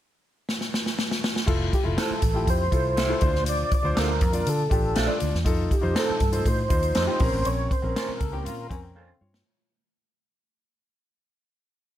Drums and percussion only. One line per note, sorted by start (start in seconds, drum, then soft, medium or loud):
0.49 snare medium
0.61 snare soft
0.74 snare medium
0.86 snare medium
0.99 snare medium
1.11 snare medium
1.24 snare loud
1.36 snare medium
1.48 kick loud
1.48 crash medium
1.73 kick medium
1.73 closed hi-hat medium
1.98 snare loud
1.98 closed hi-hat medium
2.22 kick medium
2.22 closed hi-hat medium
2.47 kick medium
2.47 closed hi-hat medium
2.72 kick medium
2.72 closed hi-hat medium
2.97 snare medium
2.97 closed hi-hat medium
3.21 kick loud
3.21 closed hi-hat medium
3.35 snare soft
3.46 closed hi-hat medium
3.72 kick medium
3.72 closed hi-hat medium
3.97 snare loud
3.97 closed hi-hat medium
4.21 kick medium
4.21 closed hi-hat medium
4.33 closed hi-hat medium
4.47 closed hi-hat medium
4.71 kick medium
4.71 closed hi-hat medium
4.96 snare medium
4.96 closed hi-hat medium
5.20 closed hi-hat medium
5.35 snare soft
5.46 kick loud
5.46 closed hi-hat medium
5.71 kick medium
5.71 closed hi-hat medium
5.96 snare loud
5.96 closed hi-hat medium
6.20 kick medium
6.20 closed hi-hat medium
6.33 closed hi-hat medium
6.46 kick medium
6.46 closed hi-hat medium
6.70 kick medium
6.70 closed hi-hat medium
6.83 closed hi-hat medium
6.95 snare medium
6.95 closed hi-hat medium
7.20 kick loud
7.20 open hi-hat medium
7.45 closed hi-hat medium
7.71 kick medium
7.71 closed hi-hat medium
7.96 snare loud
7.96 closed hi-hat medium
8.21 kick medium
8.21 closed hi-hat medium
8.46 closed hi-hat medium
8.71 kick medium
8.71 closed hi-hat medium
9.34 snare medium